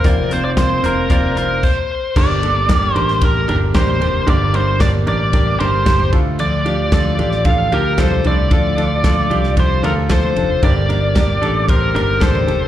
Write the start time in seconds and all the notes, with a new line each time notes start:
Already playing: C3 A#3 C4 F4 A#4 C5
0.04 F1 F3 A#3 C4 F4 A#4 D5, kick, closed hi-hat
0.30 A#3 C4 F4 A#4 C5, closed hi-hat
0.45 D5
0.57 F3 A#3 C4 F4 A#4 C5, kick, snare, closed hi-hat
0.83 F1 A#3 C4 F4 A#4 C5, closed hi-hat
1.10 F1 F3 A#3 C4 F4 A#4 D5, kick, closed hi-hat
1.37 A#3 C4 F4 A#4 C5, closed hi-hat
1.63 C5, kick, crash
2.16 G1 G2 D3 G3 A#3 D4 G4 A#4 D5, kick, crash
2.42 G3 A#3 D4 G4 A4 A#4, ride
2.69 G2 D3 G3 A#3 D4 G4 A#4, kick, snare, ride
2.93 A1 G3 A#3 D4 G4 A#4 C5, ride
3.08 snare
3.21 G3 A#3 D4 G4 A#4, kick, ride
3.47 G1 G3 A#3 D4 G4 A#4, floor tom, ride
3.74 A1 G2 D3 G3 A#3 D4 G4 A#4 C5, kick, snare, ride
3.88 floor tom
4.00 F1 G3 A#3 D4 G4 A#4, ride
4.27 G1 G2 D3 G3 A#3 D4 G4 A#4 D5, kick, ride
4.53 G3 A#3 D4 G4 A#4 C5, ride
4.80 G2 D3 G3 A#3 D4 G4 A#4 D5, kick, snare, ride
5.06 A1 G3 A#3 D4 G4 A#4 D5, ride
5.33 G3 A#3 D4 G4 A#4, kick, ride
5.59 G1 G3 A#3 D4 G4 A#4 C5, ride
5.85 G2 D3 G3 A#3 D4 G4 A#4 C5, kick, snare, ride
5.99 floor tom
6.12 D2 A2 D4 F4 A4, kick, ride
6.39 D3 F3 D4 F4 A4 D5, ride
6.65 D4 F4 G4 A4, ride
6.91 D3 F3 D4 F4 A4 D5, kick, snare, ride
7.18 A1 D4 F4 G4 A4, ride
7.32 snare
7.45 F3 D4 F4 A4 F5, kick, ride
7.71 D2 D4 F4 G4 A4 A#4, ride
7.98 C2 D3 F3 D4 F4 A4 C5, kick, snare, ride
8.11 floor tom
8.24 C2 A2 D4 F4 A4 D5, ride
8.51 D2 D3 F3 D4 F4 A4, kick, ride
8.77 D4 F4 A4, ride
9.03 D3 F3 D4 F4 A4, kick, snare, ride
9.30 C2 D4 F4 G4 A4, ride
9.44 snare
9.56 F3 D4 F4 G4 A4, kick, ride
9.60 C5
9.82 D2 D4 F4 A4 A#4, floor tom, ride
10.09 D3 F3 D4 F4 A4 C5, kick, snare, ride
10.23 floor tom
10.35 F1 D4 F4 A4, ride
10.62 G1 G2 D3 G3 A#3 D4 G4 A#4 D5, kick, ride
10.88 G3 A#3 D4 G4 A#4, ride
11.14 G2 D3 G3 A#3 D4 G4 A#4, kick, snare, ride
11.42 A1 G3 A#3 D4 G4 A4 A#4, ride
11.67 G3 A#3 D4 G4 A#4 C5, kick, ride
11.94 G1 G3 A#3 D4 G4 A#4, ride
12.20 A1 G2 D3 G3 A#3 D4 G4 A4 A#4 C5, kick, snare, ride
12.35 floor tom
12.47 F1 G3 A#3 D4 G4 A4 A#4, ride